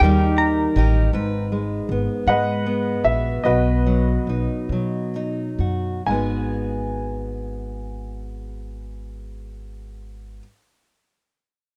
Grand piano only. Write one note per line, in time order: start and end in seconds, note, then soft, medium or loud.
2.28 3.42 B4 medium
2.28 3.42 D#5 medium
2.28 3.01 F#5 medium
3.05 3.46 E5 medium
3.44 5.11 F#4 soft
3.44 5.11 B4 soft
3.44 5.10 D#5 medium
6.07 10.39 G#5 medium